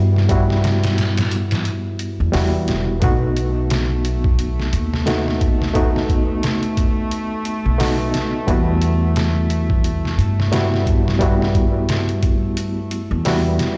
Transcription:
Already playing: upright bass G2, reed electric piano G3 B3 E4 F#4
0.16 snare
0.29 reed electric piano G3 B3 E4 F#4, kick, closed hi-hat
0.50 snare
0.64 snare, closed hi-hat
0.84 snare, closed hi-hat
0.98 snare, closed hi-hat
1.17 snare, closed hi-hat
1.31 closed hi-hat
1.51 snare, closed hi-hat
1.65 closed hi-hat
1.99 closed hi-hat
2.20 upright bass E2
2.32 upright bass E2, reed electric piano G3 B3 E4 F#4, snare, open hi-hat
2.68 upright bass E1, snare, closed hi-hat
3.00 upright bass B1, reed electric piano A3 B3 D#4 F#4, string section A3, kick, closed hi-hat
3.37 closed hi-hat
3.70 snare, closed hi-hat
4.05 closed hi-hat
4.24 kick
4.39 closed hi-hat
4.60 snare
4.73 upright bass D#2, closed hi-hat
4.94 snare
5.06 reed electric piano A3 B3 D#4 F#4, snare, closed hi-hat
5.28 snare
5.41 kick, closed hi-hat
5.62 snare
5.74 reed electric piano A3 B3 D#4 F#4, kick, closed hi-hat
5.96 snare
6.09 kick, closed hi-hat
6.43 snare, closed hi-hat
6.63 closed hi-hat
6.77 kick, closed hi-hat
7.11 closed hi-hat
7.45 closed hi-hat
7.65 upright bass B1
7.78 reed electric piano A3 B3 D#4 F#4, snare, open hi-hat
8.14 snare, closed hi-hat
8.47 upright bass E2, reed electric piano G3 B3 E4 F#4, kick, closed hi-hat
8.82 closed hi-hat
9.16 snare, closed hi-hat
9.50 closed hi-hat
9.70 kick
9.84 closed hi-hat
10.05 snare
10.18 upright bass G2, closed hi-hat
10.40 snare
10.52 reed electric piano G3 B3 E4 F#4, snare, closed hi-hat
10.74 snare
10.87 kick, closed hi-hat
11.08 snare
11.19 reed electric piano G3 B3 E4 F#4, kick, closed hi-hat
11.42 snare
11.55 kick, closed hi-hat
11.89 snare, closed hi-hat
12.09 closed hi-hat
12.23 kick, closed hi-hat
12.57 closed hi-hat
12.91 closed hi-hat
13.11 upright bass E2
13.25 reed electric piano G3 B3 E4 F#4, snare, open hi-hat
13.59 snare, closed hi-hat

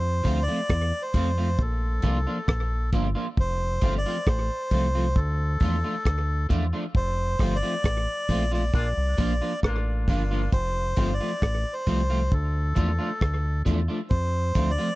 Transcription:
Already playing: fingered electric bass F2, melodica C5
0.24 fingered electric bass D2, clean electric guitar F3 A3 C4 F4, kick, open hi-hat
0.43 melodica D5
0.48 clean electric guitar F3 A3 C4 F4
0.69 fingered electric bass E2, kick, cross-stick, hi-hat pedal
1.02 melodica C5
1.14 fingered electric bass F2, clean electric guitar F3 A3 C4 F4, kick, closed hi-hat
1.38 clean electric guitar F3 A3 C4 F4
1.59 fingered electric bass A#1, melodica A4, kick
2.02 fingered electric bass C2, clean electric guitar F3 A#3 D4 F4, kick, closed hi-hat
2.27 clean electric guitar F3 A#3 D4 F4
2.48 fingered electric bass A#1, kick, cross-stick
2.93 fingered electric bass G1, clean electric guitar F3 A#3 D4 F4, kick, closed hi-hat
3.15 clean electric guitar F3 A#3 D4 F4
3.37 fingered electric bass F1, melodica C5, kick
3.81 fingered electric bass G1, clean electric guitar F3 A3 C4 F4, kick, closed hi-hat
3.98 melodica D5
4.06 clean electric guitar F3 A3 C4 F4
4.27 fingered electric bass A1, melodica C5, kick, cross-stick
4.71 fingered electric bass C2, clean electric guitar F3 A3 C4 F4, kick, closed hi-hat
4.95 clean electric guitar F3 A3 C4 F4
5.16 fingered electric bass D2, melodica A4, kick
5.60 fingered electric bass E2, clean electric guitar F3 A3 D4 F4, kick, open hi-hat
5.84 clean electric guitar F3 A3 D4 F4
6.05 fingered electric bass D2, kick, cross-stick, hi-hat pedal
6.49 fingered electric bass E2, clean electric guitar F3 A3 D4 F4, kick, closed hi-hat
6.73 clean electric guitar F3 A3 D4 F4
6.95 fingered electric bass F1, melodica C5, kick
7.39 fingered electric bass G1, clean electric guitar F3 A3 C4 F4, kick, cross-stick, open hi-hat
7.56 melodica D5
7.63 clean electric guitar F3 A3 C4 F4
7.84 fingered electric bass A1, kick, cross-stick, hi-hat pedal
8.29 fingered electric bass A#1, clean electric guitar F3 A3 C4 F4, kick, open hi-hat
8.51 clean electric guitar F3 A3 C4 F4, melodica D5
8.74 fingered electric bass A#1, horn section A#3 D4 F4, kick, hi-hat pedal
8.97 fingered electric bass C2
9.18 fingered electric bass A#1, clean electric guitar F3 A#3 D4 F4, kick, closed hi-hat
9.41 clean electric guitar F3 A#3 D4 F4
9.63 fingered electric bass A1, horn section A#3 D4 F4, kick, cross-stick
10.08 fingered electric bass G1, clean electric guitar F3 A#3 D4 F4, kick, open hi-hat
10.31 clean electric guitar F3 A#3 D4 F4
10.52 fingered electric bass F1, melodica C5, kick, hi-hat pedal
10.96 fingered electric bass G1, clean electric guitar F3 A3 C4 F4, kick, closed hi-hat
11.13 melodica D5
11.20 clean electric guitar F3 A3 C4 F4
11.42 fingered electric bass A1, kick, cross-stick
11.73 melodica C5
11.87 fingered electric bass C2, clean electric guitar F3 A3 C4 F4, kick, closed hi-hat
12.10 clean electric guitar F3 A3 C4 F4
12.32 fingered electric bass D2, melodica A4, kick
12.75 fingered electric bass E2, clean electric guitar F3 A3 D4 F4, kick, closed hi-hat
12.99 clean electric guitar F3 A3 D4 F4
13.21 fingered electric bass D2, kick, cross-stick
13.65 fingered electric bass E2, clean electric guitar F3 A3 D4 F4, kick, closed hi-hat
13.88 clean electric guitar F3 A3 D4 F4
14.10 fingered electric bass F2, melodica C5, kick
14.55 fingered electric bass D2, clean electric guitar F3 A3 C4 F4, kick, closed hi-hat
14.71 melodica D5
14.78 clean electric guitar F3 A3 C4 F4

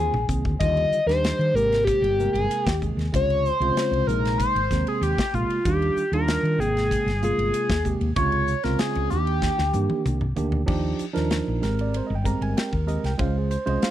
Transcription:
Already playing: tine electric piano D#3 A#3 C4 F4, analog synth lead G#4
0.13 fretless electric bass A#1, mid tom
0.27 fretless electric bass C2, tine electric piano D#3 A#3 C4 G#4, kick, hi-hat pedal
0.45 fretless electric bass D2, kick
0.59 fretless electric bass D#2, tine electric piano D3 D#3 G3 F4, analog synth lead D#5, kick, hi-hat pedal, ride
0.77 ride
0.91 muted fretless electric bass stroke, hi-hat pedal
1.06 fretless electric bass D#2, tine electric piano D#3 G3 D4 G4, analog synth lead C5, snare, ride
1.24 snare, hi-hat pedal, ride
1.39 fretless electric bass D#3, ride
1.54 fretless electric bass G#1, tine electric piano C3 G#3 A#3 G4, analog synth lead A#4, hi-hat pedal
1.72 snare, ride
1.85 analog synth lead G4, kick, hi-hat pedal, ride
2.02 fretless electric bass G1, ride
2.19 tine electric piano C3 G#3 A#3 A#4, hi-hat pedal
2.33 fretless electric bass G1, analog synth lead G#4, ride
2.51 hi-hat pedal, ride
2.66 fretless electric bass D#2, analog synth lead G4, kick, snare, ride
2.81 tine electric piano C3 G#3 A#3 G#4, kick, hi-hat pedal
2.97 fretless electric bass D#2, snare, ride
3.12 fretless electric bass C#2, tine electric piano C3 C#3 G#3 F4, analog synth lead C#5, kick, hi-hat pedal, ride
3.30 ride
3.45 analog synth lead C5, hi-hat pedal
3.60 fretless electric bass C2, tine electric piano C#3 G#3 C4 F4, analog synth lead C5, ride
3.75 muted fretless electric bass stroke, snare, hi-hat pedal, ride
3.91 fretless electric bass C2, ride
4.07 fretless electric bass A#1, tine electric piano C3 G#3 A#3 D#4, analog synth lead A#4, hi-hat pedal
4.25 snare, ride
4.38 analog synth lead C5, kick, hi-hat pedal, ride
4.55 fretless electric bass G#1, ride
4.71 fretless electric bass D#2, tine electric piano C3 G#3 A#3 C4, kick, snare, hi-hat pedal
4.86 analog synth lead G#4, muted fretless electric bass stroke, ride
5.01 fretless electric bass D#2, analog synth lead G4, hi-hat pedal, ride
5.18 kick, snare, ride
5.33 fretless electric bass A#1, tine electric piano C3 G#3 A#3 F4, analog synth lead F4, kick, hi-hat pedal
5.50 ride
5.65 fretless electric bass D#2, tine electric piano D#3 G3 D4 F4, analog synth lead G4, kick, hi-hat pedal, ride
5.82 ride
5.96 muted fretless electric bass stroke, hi-hat pedal
6.12 fretless electric bass D#2, tine electric piano D#3 G3 D4 F4, analog synth lead A#4, ride
6.28 snare, hi-hat pedal, ride
6.43 fretless electric bass D#3, ride
6.58 fretless electric bass G#1, tine electric piano C3 G#3 A#3 G5, analog synth lead G#4, hi-hat pedal
6.77 snare, ride
6.91 kick, hi-hat pedal, ride
7.06 fretless electric bass G1, snare, ride
7.21 tine electric piano C3 G#3 A#3 F4, analog synth lead G#4, hi-hat pedal
7.38 fretless electric bass G1, ride
7.54 hi-hat pedal, ride
7.69 fretless electric bass D#2, kick, snare, ride
7.84 tine electric piano C3 G#3 A#3 G4, kick, hi-hat pedal
8.01 fretless electric bass D#2, ride
8.16 fretless electric bass C#2, tine electric piano C3 C#3 G#3 F4, analog synth lead C#5, kick, hi-hat pedal, ride
8.32 ride
8.47 hi-hat pedal
8.63 fretless electric bass C2, tine electric piano C#3 G#3 C4 F4, analog synth lead A#4, snare, ride
8.79 analog synth lead G#4, muted fretless electric bass stroke, snare, hi-hat pedal, ride
8.95 fretless electric bass C#2, ride
9.10 fretless electric bass D#2, tine electric piano D#3 A#3 D4 G4, analog synth lead G4, hi-hat pedal
9.27 ride
9.42 kick, snare, hi-hat pedal
9.58 fretless electric bass D2, snare
9.73 fretless electric bass G2, tine electric piano D#3 A#3 D4 G4, hi-hat pedal, high tom
9.90 muted fretless electric bass stroke, high tom
10.05 fretless electric bass C2, hi-hat pedal, mid tom
10.21 mid tom
10.36 fretless electric bass D2, tine electric piano D#3 A#3 D4 G4, floor tom, hi-hat pedal
10.52 floor tom
10.66 fretless electric bass D#2, tine electric piano F3 D4 D#4 G4, kick, crash
10.99 muted fretless electric bass stroke, hi-hat pedal, ride
11.13 fretless electric bass D#2, tine electric piano F3 D4 D#4 A#4, snare, ride
11.31 snare, ride
11.48 fretless electric bass A#1
11.62 fretless electric bass G#1, tine electric piano G#3 C4 G4 A#4, snare, hi-hat pedal, ride
11.79 tine electric piano D5, ride
11.94 tine electric piano C5, ride
12.07 fretless electric bass G1, tine electric piano D#5
12.15 tine electric piano G5
12.24 tine electric piano G#3 C4 G4 A#4 A#5, kick, hi-hat pedal, ride
12.41 fretless electric bass G1, tine electric piano G#5, ride
12.57 tine electric piano G5, snare, ride
12.72 fretless electric bass D#2, tine electric piano A#4, kick
12.86 tine electric piano G#3 C4 G4 A#4 D#5, hi-hat pedal, ride
13.04 fretless electric bass C2, tine electric piano G5, snare, ride
13.18 fretless electric bass C#2, tine electric piano G#3 C#4 F4 C5 F5, kick, ride
13.38 tine electric piano G#4
13.51 tine electric piano C5, hi-hat pedal, ride
13.66 fretless electric bass C2, tine electric piano G#3 C#4 F4 C5 D#5, ride
13.82 tine electric piano F5, snare, ride

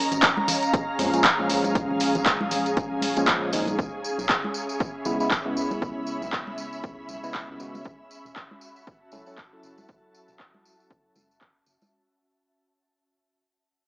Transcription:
Already playing: ambient pad C#4 D#5 A#5
0.00 ambient pad F5
0.12 fm bass G#1, ambient pad G#4, closed hi-hat, tambourine
0.22 kick, clap, closed hi-hat, tambourine
0.37 high conga
0.48 open hi-hat, tambourine, low conga
0.63 closed hi-hat, tambourine
0.74 kick, closed hi-hat, tambourine
0.99 fm bass F2, tine electric piano A#2 F3 G#3 C#4, open hi-hat, tambourine, high conga
1.13 tine electric piano A#2 F3 G#3 C#4, closed hi-hat, tambourine
1.24 kick, clap, closed hi-hat, tambourine
1.39 tine electric piano A#2 F3 G#3 C#4
1.49 fm bass A#1, open hi-hat, tambourine
1.64 closed hi-hat, tambourine, high conga
1.75 fm bass A#1, kick, closed hi-hat, tambourine
1.90 low conga
2.00 open hi-hat, tambourine
2.15 fm bass G#1, closed hi-hat, tambourine, low conga
2.26 kick, clap, closed hi-hat, tambourine
2.41 high conga
2.51 open hi-hat, tambourine, low conga
2.66 closed hi-hat, tambourine
2.77 fm bass A#1, kick, closed hi-hat, tambourine
3.01 open hi-hat, tambourine, high conga
3.16 tine electric piano A#2 F3 G#3 C#4, closed hi-hat, tambourine
3.28 kick, clap, closed hi-hat, tambourine
3.53 fm bass G#1, tine electric piano A#2 F3 G#3 D#4, open hi-hat, tambourine
3.67 closed hi-hat, tambourine, high conga
3.79 fm bass C#2, ambient pad C#4, kick, tambourine
4.04 tambourine
4.19 fm bass B1, tambourine
4.29 kick, clap, tambourine
4.40 ambient pad E5, high conga
4.54 ambient pad B5, tambourine
4.69 tambourine
4.80 kick, tambourine
5.05 fm bass G#1, tine electric piano C#3 G#3 B3 E4, tambourine, high conga
5.20 tine electric piano C#3 G#3 B3 E4, tambourine
5.31 kick, clap, tambourine
5.45 tine electric piano C#3 G#3 B3 E4
5.57 fm bass C#2, tambourine
5.71 tambourine, high conga
5.82 fm bass C#2, kick, tambourine
6.07 tambourine
6.22 fm bass B1, tambourine
6.33 kick, clap, tambourine
6.47 high conga
6.58 tambourine
6.73 tambourine
6.84 fm bass C#2, kick, tambourine
7.09 fm bass B1, tambourine, high conga
7.23 tine electric piano C#3 G#3 B3 E4, tambourine
7.34 kick, clap, tambourine
7.49 fm bass C#2
7.60 fm bass G#1, tine electric piano C#3 G#3 B3 F#4, tambourine
7.75 tambourine, high conga
7.84 fm bass F#1, kick, tambourine
8.01 ambient pad F#4
8.11 tambourine
8.25 fm bass E1, tambourine
8.36 kick, clap, tambourine
8.51 high conga
8.60 ambient pad A5, tambourine
8.76 tambourine
8.87 kick, tambourine
9.12 fm bass C#2, tine electric piano F#3 C#4 E4 A4, tambourine, high conga
9.26 tine electric piano F#3 C#4 E4 A4, tambourine
9.38 kick, clap, tambourine
9.52 tine electric piano F#3 C#4 E4 A4
9.63 fm bass F#1, tambourine
9.78 tambourine, high conga
9.88 fm bass F#1, kick, tambourine
10.15 tambourine
10.28 fm bass E1, tambourine
10.39 kick, clap, tambourine
10.54 high conga
10.65 tambourine
10.80 tambourine
10.90 fm bass F#1, kick, tambourine
11.16 fm bass F#1, tambourine, high conga
11.31 tambourine
11.41 kick, clap, tambourine
11.66 fm bass F#1, tambourine
11.82 tambourine, high conga

